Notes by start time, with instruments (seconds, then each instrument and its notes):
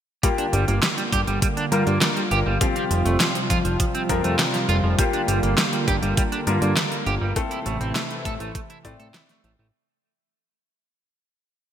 0.23 analog synth pad D3 G3 A#3 F4, clean electric guitar G3, grand piano A#3 F4 G4, kick, closed hi-hat
0.38 clean electric guitar D4, closed hi-hat
0.53 analog synth bass G1, clean electric guitar G3, closed hi-hat
0.68 analog synth bass G1, clean electric guitar A#3, closed hi-hat
0.83 clean electric guitar G3, snare, closed hi-hat
0.98 clean electric guitar G3, closed hi-hat
1.12 analog synth bass G2, clean electric guitar G4, kick, closed hi-hat
1.27 analog synth bass G1, clean electric guitar G3, closed hi-hat
1.42 clean electric guitar G3, kick, closed hi-hat
1.57 clean electric guitar D4, closed hi-hat
1.72 analog synth bass G2, clean electric guitar G3, grand piano A#3 F4 A#4, closed hi-hat
1.87 analog synth bass G2, clean electric guitar A#3, closed hi-hat
2.02 clean electric guitar G3, snare, closed hi-hat
2.16 clean electric guitar G3, closed hi-hat
2.31 analog synth bass G1, clean electric guitar G4, closed hi-hat
2.46 analog synth bass G1, clean electric guitar G3
2.61 analog synth pad C3 F3, clean electric guitar F3, grand piano C4 F4 G4, kick, closed hi-hat
2.76 clean electric guitar C4, closed hi-hat
2.91 analog synth bass F1, clean electric guitar F3, closed hi-hat
3.05 analog synth bass F1, clean electric guitar A3, closed hi-hat
3.20 clean electric guitar F3, snare, closed hi-hat
3.35 clean electric guitar F3, closed hi-hat
3.50 analog synth bass F2, clean electric guitar F4, kick, closed hi-hat
3.65 analog synth bass F1, clean electric guitar F3, closed hi-hat
3.80 clean electric guitar F3, kick, closed hi-hat
3.95 clean electric guitar C4, closed hi-hat
4.09 analog synth bass F2, clean electric guitar F3, grand piano C4 F4 A#4, kick, closed hi-hat
4.24 analog synth bass F2, clean electric guitar A3, closed hi-hat
4.39 clean electric guitar F3, snare, closed hi-hat
4.54 clean electric guitar F3, snare, closed hi-hat
4.69 analog synth bass F1, clean electric guitar F4, closed hi-hat
4.84 analog synth bass F1, clean electric guitar F3
4.98 analog synth pad D3 A#3, clean electric guitar G3, grand piano A#3 F4 G4, kick, closed hi-hat
5.13 clean electric guitar D4, closed hi-hat
5.28 analog synth bass G1, clean electric guitar G3, closed hi-hat
5.43 analog synth bass G1, clean electric guitar A#3, closed hi-hat
5.58 clean electric guitar G3, snare, closed hi-hat
5.73 clean electric guitar G3, closed hi-hat
5.88 analog synth bass G2, clean electric guitar G4, kick, closed hi-hat
6.02 analog synth bass G1, clean electric guitar G3, closed hi-hat
6.17 clean electric guitar G3, kick, closed hi-hat
6.32 clean electric guitar D4, closed hi-hat
6.47 analog synth bass G2, clean electric guitar G3, grand piano A#3 F4 A#4, closed hi-hat
6.62 analog synth bass G2, clean electric guitar A#3, closed hi-hat
6.77 clean electric guitar G3, snare, closed hi-hat
6.92 clean electric guitar G3, closed hi-hat
7.06 analog synth bass G1, clean electric guitar G4, closed hi-hat
7.21 analog synth bass G1, clean electric guitar G3
7.36 analog synth pad C3 E3 A3 E4, clean electric guitar A3, grand piano C4 E4 A4, kick, closed hi-hat
7.51 clean electric guitar E4, closed hi-hat
7.66 analog synth bass A1, clean electric guitar A3, closed hi-hat
7.81 analog synth bass A1, clean electric guitar C4, closed hi-hat
7.96 clean electric guitar A3, snare, closed hi-hat
8.10 clean electric guitar A3, closed hi-hat
8.25 analog synth bass A2, clean electric guitar A4, kick, closed hi-hat
8.40 analog synth bass A1, clean electric guitar A3, closed hi-hat
8.55 clean electric guitar A3, kick, closed hi-hat
8.70 clean electric guitar E4, closed hi-hat
8.85 analog synth bass A2, clean electric guitar A3, grand piano C4 E4 D5, kick, closed hi-hat
8.99 analog synth bass A2, clean electric guitar A4, closed hi-hat
9.14 clean electric guitar E4, snare, closed hi-hat
9.29 clean electric guitar A3, snare, closed hi-hat
9.44 analog synth bass A1, clean electric guitar A3, closed hi-hat
9.59 analog synth bass A1, clean electric guitar A3